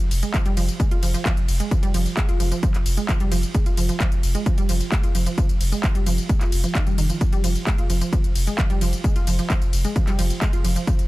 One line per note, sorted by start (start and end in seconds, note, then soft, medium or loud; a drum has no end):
0.00 0.10 F1 medium
0.11 0.22 F1 loud
0.11 open hi-hat loud
0.11 ride medium
0.11 tambourine medium
0.23 0.30 G#3 medium
0.23 closed hi-hat medium
0.23 tambourine soft
0.34 0.39 F3 medium
0.34 kick loud
0.34 clap loud
0.34 closed hi-hat medium
0.34 tambourine soft
0.46 0.56 F1 medium
0.46 0.50 G3 loud
0.46 closed hi-hat medium
0.46 tambourine soft
0.57 0.68 F1 loud
0.57 0.62 F3 loud
0.57 open hi-hat medium
0.57 ride medium
0.57 tambourine medium
0.68 closed hi-hat medium
0.68 tambourine soft
0.80 0.83 G#3 medium
0.80 kick loud
0.80 closed hi-hat medium
0.80 tambourine soft
0.91 1.02 F1 medium
0.91 0.94 F4 medium
0.91 closed hi-hat medium
0.91 tambourine soft
1.03 1.14 F1 loud
1.03 1.10 F3 medium
1.03 open hi-hat loud
1.03 ride medium
1.03 tambourine medium
1.14 1.17 F3 medium
1.14 closed hi-hat medium
1.14 tambourine soft
1.25 1.30 F3 loud
1.25 kick loud
1.25 clap loud
1.25 closed hi-hat medium
1.25 tambourine soft
1.37 1.48 F1 medium
1.37 closed hi-hat medium
1.37 tambourine soft
1.48 1.60 F1 loud
1.48 open hi-hat medium
1.48 ride medium
1.48 tambourine medium
1.60 1.67 G#3 medium
1.60 closed hi-hat medium
1.60 tambourine soft
1.71 1.76 F3 medium
1.71 kick loud
1.71 closed hi-hat medium
1.71 tambourine soft
1.83 1.94 F1 medium
1.83 1.88 G3 loud
1.83 closed hi-hat medium
1.83 tambourine soft
1.94 2.06 F1 loud
1.94 1.99 F3 loud
1.94 open hi-hat loud
1.94 ride medium
1.94 tambourine medium
2.06 closed hi-hat medium
2.06 tambourine soft
2.17 2.20 G#3 medium
2.17 kick loud
2.17 clap loud
2.17 closed hi-hat medium
2.17 tambourine soft
2.29 2.39 F1 medium
2.29 2.31 F4 medium
2.29 closed hi-hat medium
2.29 tambourine soft
2.40 2.51 F1 loud
2.40 2.47 F3 medium
2.40 open hi-hat medium
2.40 ride medium
2.40 tambourine medium
2.52 2.54 F3 medium
2.52 closed hi-hat medium
2.52 tambourine soft
2.63 2.68 F3 loud
2.63 kick loud
2.63 closed hi-hat medium
2.63 tambourine soft
2.74 2.85 F1 medium
2.74 clap soft
2.74 closed hi-hat medium
2.74 tambourine soft
2.86 2.97 F1 loud
2.86 open hi-hat loud
2.86 ride medium
2.86 tambourine medium
2.97 3.04 G#3 medium
2.97 closed hi-hat medium
2.97 tambourine soft
3.09 3.14 F3 medium
3.09 kick loud
3.09 clap loud
3.09 closed hi-hat medium
3.09 tambourine soft
3.20 3.31 F1 medium
3.20 3.25 G3 loud
3.20 closed hi-hat medium
3.20 tambourine soft
3.32 3.43 F1 loud
3.32 3.36 F3 loud
3.32 open hi-hat loud
3.32 ride medium
3.32 tambourine medium
3.43 closed hi-hat medium
3.43 tambourine soft
3.55 3.57 G#3 medium
3.55 kick loud
3.55 closed hi-hat medium
3.55 tambourine soft
3.66 3.77 F1 medium
3.66 3.69 F4 medium
3.66 closed hi-hat medium
3.66 tambourine soft
3.77 3.89 F1 loud
3.77 3.85 F3 medium
3.77 open hi-hat loud
3.77 ride medium
3.77 tambourine medium
3.89 3.92 F3 medium
3.89 closed hi-hat medium
3.89 tambourine soft
4.00 4.05 F3 loud
4.00 kick loud
4.00 clap loud
4.00 closed hi-hat medium
4.00 tambourine soft
4.12 4.23 F1 medium
4.12 closed hi-hat medium
4.12 tambourine soft
4.23 4.35 F1 loud
4.23 open hi-hat medium
4.23 ride medium
4.23 tambourine medium
4.35 4.42 G#3 medium
4.35 closed hi-hat medium
4.35 tambourine soft
4.46 4.51 F3 medium
4.46 kick loud
4.46 closed hi-hat medium
4.46 tambourine soft
4.58 4.69 F1 medium
4.58 4.62 G3 loud
4.58 closed hi-hat medium
4.58 tambourine soft
4.69 4.80 F1 loud
4.69 4.74 F3 loud
4.69 open hi-hat loud
4.69 ride medium
4.69 tambourine medium
4.81 closed hi-hat medium
4.81 tambourine soft
4.92 4.95 G#3 medium
4.92 kick loud
4.92 clap loud
4.92 closed hi-hat medium
4.92 tambourine soft
5.03 5.14 F1 medium
5.03 5.06 F4 medium
5.03 closed hi-hat medium
5.03 tambourine soft
5.15 5.26 F1 loud
5.15 5.22 F3 medium
5.15 open hi-hat loud
5.15 ride medium
5.15 tambourine medium
5.26 5.29 F3 medium
5.26 closed hi-hat medium
5.26 tambourine soft
5.38 5.43 F3 loud
5.38 kick loud
5.38 closed hi-hat medium
5.38 tambourine soft
5.49 5.60 F1 medium
5.49 closed hi-hat medium
5.49 tambourine soft
5.61 5.72 F1 loud
5.61 open hi-hat loud
5.61 ride medium
5.61 tambourine medium
5.72 5.79 G#3 medium
5.72 closed hi-hat soft
5.72 tambourine soft
5.84 5.88 F3 medium
5.84 kick loud
5.84 clap loud
5.84 closed hi-hat medium
5.84 tambourine soft
5.95 6.06 F1 medium
5.95 6.00 G3 loud
5.95 closed hi-hat medium
5.95 tambourine soft
6.06 6.18 F1 loud
6.06 6.11 F3 loud
6.06 open hi-hat medium
6.06 ride medium
6.06 tambourine medium
6.18 closed hi-hat medium
6.18 tambourine soft
6.29 6.32 G#3 medium
6.29 kick loud
6.29 closed hi-hat medium
6.29 tambourine soft
6.41 6.52 F1 medium
6.41 6.44 F4 medium
6.41 clap soft
6.41 closed hi-hat medium
6.41 tambourine soft
6.52 6.64 F1 loud
6.52 open hi-hat loud
6.52 ride medium
6.52 tambourine medium
6.64 6.71 F3 medium
6.64 closed hi-hat medium
6.64 tambourine soft
6.75 6.78 D#3 loud
6.75 kick loud
6.75 clap loud
6.75 closed hi-hat medium
6.75 tambourine soft
6.87 6.98 F1 medium
6.87 6.90 G3 medium
6.87 closed hi-hat medium
6.87 tambourine soft
6.98 7.09 F1 loud
6.98 7.05 D#3 medium
6.98 open hi-hat loud
6.98 ride medium
6.98 tambourine medium
7.10 7.14 F3 medium
7.10 closed hi-hat medium
7.10 tambourine soft
7.21 7.26 F3 medium
7.21 kick loud
7.21 closed hi-hat medium
7.21 tambourine soft
7.32 7.43 F1 medium
7.32 7.37 G3 loud
7.32 closed hi-hat medium
7.32 tambourine soft
7.44 7.55 F1 loud
7.44 7.49 F3 loud
7.44 open hi-hat loud
7.44 ride medium
7.44 tambourine medium
7.55 closed hi-hat soft
7.55 tambourine soft
7.67 7.70 G#3 medium
7.67 kick loud
7.67 clap loud
7.67 closed hi-hat medium
7.67 tambourine soft
7.78 7.89 F1 medium
7.78 7.81 F4 medium
7.78 closed hi-hat medium
7.78 tambourine soft
7.90 8.01 F1 loud
7.90 7.97 F3 medium
7.90 open hi-hat medium
7.90 ride medium
7.90 tambourine medium
8.01 8.04 F3 medium
8.01 closed hi-hat medium
8.01 tambourine soft
8.13 8.17 F3 loud
8.13 kick loud
8.13 closed hi-hat medium
8.13 tambourine soft
8.24 8.35 F1 medium
8.24 closed hi-hat medium
8.24 tambourine soft
8.35 8.47 F1 loud
8.35 open hi-hat loud
8.35 ride medium
8.35 tambourine medium
8.47 8.54 G#3 medium
8.47 closed hi-hat medium
8.47 tambourine soft
8.58 8.63 F3 medium
8.58 kick loud
8.58 clap loud
8.58 closed hi-hat medium
8.58 tambourine soft
8.70 8.81 F1 medium
8.70 8.75 G3 loud
8.70 closed hi-hat soft
8.70 tambourine soft
8.81 8.93 F1 loud
8.81 8.86 F3 loud
8.81 open hi-hat loud
8.81 ride medium
8.81 tambourine medium
8.93 closed hi-hat medium
8.93 tambourine soft
9.04 9.07 G#3 medium
9.04 kick loud
9.04 closed hi-hat medium
9.04 tambourine soft
9.16 9.26 F1 medium
9.16 9.19 F4 medium
9.16 closed hi-hat medium
9.16 tambourine soft
9.27 9.38 F1 loud
9.27 9.34 F3 medium
9.27 open hi-hat loud
9.27 ride medium
9.27 tambourine medium
9.39 9.42 F3 medium
9.39 closed hi-hat medium
9.39 tambourine soft
9.50 9.55 F3 loud
9.50 kick loud
9.50 clap loud
9.50 closed hi-hat medium
9.50 tambourine soft
9.62 9.72 F1 medium
9.62 closed hi-hat medium
9.62 tambourine soft
9.73 9.84 F1 loud
9.73 open hi-hat medium
9.73 ride medium
9.73 tambourine medium
9.84 9.92 G#3 medium
9.84 closed hi-hat medium
9.84 tambourine soft
9.96 10.01 F3 medium
9.96 kick loud
9.96 closed hi-hat medium
9.96 tambourine soft
10.07 10.18 F1 medium
10.07 10.12 G3 loud
10.07 clap soft
10.07 closed hi-hat medium
10.07 tambourine soft
10.19 10.30 F1 loud
10.19 10.23 F3 loud
10.19 open hi-hat loud
10.19 ride medium
10.19 tambourine medium
10.30 closed hi-hat medium
10.30 tambourine soft
10.42 10.44 G#3 medium
10.42 kick loud
10.42 clap loud
10.42 closed hi-hat medium
10.42 tambourine soft
10.53 10.64 F1 medium
10.53 10.56 F4 medium
10.53 closed hi-hat soft
10.53 tambourine soft
10.64 10.76 F1 loud
10.64 10.72 F3 medium
10.64 open hi-hat medium
10.64 ride medium
10.64 tambourine medium
10.76 10.79 F3 medium
10.76 closed hi-hat medium
10.76 tambourine soft
10.87 10.92 F3 loud
10.87 kick loud
10.87 closed hi-hat medium
10.87 tambourine soft
10.99 11.08 F1 medium
10.99 closed hi-hat medium
10.99 tambourine soft